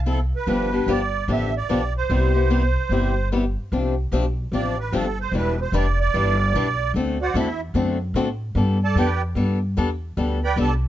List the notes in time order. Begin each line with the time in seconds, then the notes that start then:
Already playing: C2
0.06 F3 C4 E4 A4
0.36 B4
0.47 G1 D3 F3 B3 D4 G4
0.72 B3 D4 G4
0.86 G1 D3 F3 B3 D4 G4
0.91 D5
1.28 A1 D3 F3 B3 D4 G4
1.32 E5
1.57 D5
1.69 B1 D3 F3 B3 D4 G4
1.98 C5
2.10 C2 C3 G3 B3 E4 G4
2.34 B3 E4 G4
2.50 C3 G3 B3 E4 G4
2.89 G1 C3 G3 B3 E4 G4
3.32 C3 G3 B3 E4 G4
3.72 C2 C3 F3 C4 D4 G4
4.12 B1 C3 F3 C4 D4 G4
4.52 A1 C3 F3 C4 D4 G4 D5
4.80 B4
4.92 G1 C3 F3 C4 D4 G4 A4
5.21 C5
5.32 E1 E3 G3 D4 E4 B4
5.37 B4
5.61 C5
5.72 F1 E3 G3 D4 E4 B4
5.77 D5
6.00 D5
6.14 G1 E3 G3 D4 E4 B4
6.54 B1 E3 G3 D4 E4 B4
6.94 D2 D3 A3 C4 F#4 A4
7.21 F#4 C5 D5 F#5
7.34 E2 D3 A3 C4 F#4 A4 E5
7.38 E4
7.74 F#2 D3 A3 C4 F#4 A4
8.14 A2 D3 A3 C4 F#4 A4
8.55 G2 G3 B3 D4 A4
8.83 A4 D5 A5
8.95 F2 G3 B3 D4 A4 D5 G5
8.99 G4 B4
9.35 G2 G3 B3 D4 A4
9.77 E2 G3 B3 D4 A4
10.17 D2 G3 B3 D4 A4
10.44 B4 D5 G5 B5
10.56 C2 G3 B3 D4 A4 D5 A5